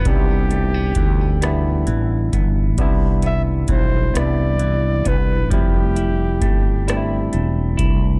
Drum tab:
HH |xxxxxx|xxxxxx|xxxxxx|
SD |---r--|---r--|---r--|
BD |o-o--o|o-o--o|o-o--o|